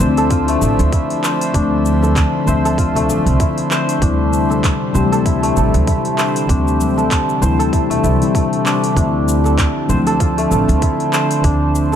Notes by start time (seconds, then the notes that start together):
Already playing: D3 F3 A3 D4 E4 G4 A4 C5 E5
0.00 D2 F3 A3 C4 C5, high conga, low conga, shaker
0.17 A4, open hi-hat, shaker
0.30 F4, kick, open hi-hat, shaker
0.48 A3, open hi-hat, shaker
0.62 A1 A4, high bongo, shaker
0.79 D2, open hi-hat, high conga, shaker
0.93 E4, kick, open hi-hat, shaker
1.10 open hi-hat
1.24 C5, clap, shaker
1.41 open hi-hat, shaker
1.52 D2 D3 F3 A3 C4 D4, kick, open hi-hat, shaker
1.86 shaker
2.03 A4, high bongo, shaker
2.16 kick, clap, open hi-hat, shaker
2.45 D2 D3 F3 A3 C4 C5 E5, high conga, low conga, shaker
2.65 A4, open hi-hat, shaker
2.78 F4, kick, open hi-hat, shaker
2.95 A3, open hi-hat, low conga, shaker
3.09 A1 A4, high bongo, high conga, shaker
3.26 C2, open hi-hat, shaker
3.40 E4, kick, open hi-hat, shaker
3.58 open hi-hat
3.71 C5, clap, high bongo, shaker
3.89 open hi-hat, shaker
4.00 D2 C3 D3 E3 G3 C4 D4, kick, open hi-hat, shaker
4.04 E4
4.24 G4
4.33 shaker
4.50 A4, high bongo, shaker
4.64 kick, clap, open hi-hat, shaker
4.92 D2 C3 E3 G3 C4 C5, high conga, low conga, shaker
4.97 G4
5.12 A4, open hi-hat, shaker
5.25 E4, kick, open hi-hat, shaker
5.43 A3, open hi-hat, shaker
5.56 A1 A4, high bongo, shaker
5.74 D2, open hi-hat, high conga, shaker
5.87 E4, kick, open hi-hat, shaker
6.05 open hi-hat
6.18 C5, clap, shaker
6.36 open hi-hat, shaker
6.47 D2 C3 E3 G3 C4 D4, kick, open hi-hat, shaker
6.68 shaker
6.80 high conga, shaker
6.97 A4, high bongo, shaker
7.11 kick, clap, open hi-hat, shaker
7.29 shaker
7.40 D2 C3 E3 G3 C4 E4 C5, high conga, low conga, shaker
7.59 A4, open hi-hat, shaker
7.73 E4, kick, open hi-hat, shaker
7.90 A3, open hi-hat, low conga, shaker
8.03 C2 E4, high bongo, high conga, shaker
8.19 C3 E3 G3 C4 E4, open hi-hat, shaker
8.34 A3, kick, open hi-hat, shaker
8.53 open hi-hat
8.65 D4, clap, high bongo, shaker
8.84 open hi-hat, shaker
8.94 D2 D3 F3 A3 C4 D4, kick, open hi-hat, shaker
8.98 E4
9.05 D4
9.28 shaker
9.44 A4, high bongo, shaker
9.58 F3, kick, clap, open hi-hat, shaker
9.87 D2 D3 F3 A3 C4 C5, high conga, low conga, shaker
10.03 A4 C5, open hi-hat
10.07 shaker
10.20 F4, kick, open hi-hat, shaker
10.38 A3, open hi-hat, shaker
10.51 A1 A4, high bongo, shaker
10.68 D2, open hi-hat, high conga, shaker
10.82 E4, kick, open hi-hat, shaker
11.00 open hi-hat
11.13 C5, clap, shaker
11.31 open hi-hat, shaker
11.42 D2 D3 F3 A3 C4 D4, kick, open hi-hat, shaker
11.46 D4
11.75 shaker
11.92 high bongo